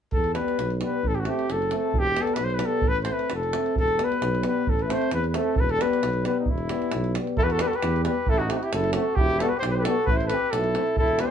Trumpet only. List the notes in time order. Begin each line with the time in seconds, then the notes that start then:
0.13 A4
0.34 B4
0.85 B4
1.08 A4
1.15 G4
1.20 F#4
1.30 G4
1.52 A4
1.78 A4
1.99 G4
2.21 A4
2.34 B4
2.44 C5
2.55 B4
2.66 A4
2.88 B4
3.03 C5
3.13 B4
3.35 A4
3.78 A4
4.04 B4
4.47 B4
4.70 A4
4.82 B4
4.92 C5
5.14 B4
5.28 B4
5.36 A4
5.57 A4 B4
5.71 A4
5.81 B4
6.26 B4
6.40 D#4
6.50 E4
7.38 A4
7.44 B4
7.52 A4
7.62 B4
7.68 A4
7.76 B4
8.04 B4
8.29 A4
8.38 F#4
8.52 G4
8.56 F#4
8.64 G4
8.73 A4
8.94 A4
9.15 G4
9.40 A4
9.49 B4
9.59 C5
9.71 B4 C5
9.79 A4 B4
10.05 B4
10.17 C5
10.27 B4
10.51 A4
10.98 A4
11.20 B4
11.26 C5